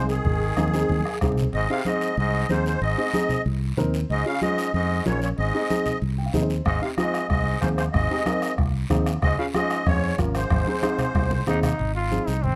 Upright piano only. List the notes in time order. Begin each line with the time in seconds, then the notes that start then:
Already playing: C4 D#4 G#4
0.57 C4 D#4 G#4
0.74 C4 D#4 G#4
1.21 C4 D#4 G#4
1.69 C4 D#4 G#4
1.85 C4 D#4 G#4
2.50 C4 D#4 G#4
2.98 C4 D#4 G#4
3.14 C4 D#4 G#4
3.77 C4 D#4 A#4 C5
4.25 C#4 F4 G#4
4.41 C#4 F4 G#4
5.05 C#4 F4 A#4
5.54 C4 D#4 G#4
5.70 C4 D#4 G#4
6.18 G5
6.26 F5
6.33 C4 D#4 G#4 D#5
6.42 C5
6.82 C4 D#4 G4
6.97 C4 D#4 F4
7.62 C4 D#4 G#4
8.10 C4 D#4 G4
8.26 C4 D#4 A#4
8.90 C4 D#4 G#4
9.38 C#4 F4 G#4
9.54 C#4 F4 G#4
10.19 C#4 F4 A#4
10.67 C4 D#4 G#4
10.82 C4 D#4 G#4
11.47 C4 D#4 G#4
12.11 C4 D#4 G#4